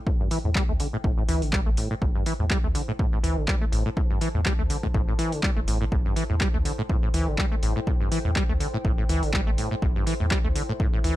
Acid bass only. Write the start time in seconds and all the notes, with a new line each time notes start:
0.07 A2
0.20 G2
0.31 E3
0.44 A2
0.55 G3
0.69 A3
0.80 D3
0.93 A2
1.04 A2
1.18 A2
1.29 E3
1.42 D3
1.53 G3
1.66 A3
1.77 A2
1.91 A2
2.02 A2
2.15 G2
2.26 E3
2.40 A2
2.50 G3
2.64 A3
2.75 D3
2.88 A2
2.99 A2
3.12 A2
3.23 E3
3.37 D3
3.48 G3
3.61 A3
3.72 A2
3.86 A2
3.97 A2
4.10 G2
4.21 E3
4.34 A2
4.45 G3
4.59 A3
4.70 D3
4.83 A2
4.94 A2
5.08 A2
5.19 E3
5.32 D3
5.43 G3
5.56 A3
5.67 A2
5.81 A2
5.92 A2
6.05 G2
6.16 E3
6.30 A2
6.41 G3
6.54 A3
6.65 D3
6.78 A2
6.89 A2
7.03 A2
7.14 E3
7.27 D3
7.38 G3
7.52 A3
7.63 A2
7.76 A2
7.87 A2
8.01 G2
8.11 E3
8.25 A2
8.36 G3
8.49 A3
8.60 D3
8.74 A2
8.85 A2
8.98 A2
9.09 E3
9.23 D3
9.34 G3
9.47 A3
9.58 A2
9.71 A2
9.82 A2
9.96 G2
10.07 E3
10.20 A2
10.31 G3
10.44 A3
10.55 D3
10.69 A2
10.80 A2
10.93 A2
11.04 E3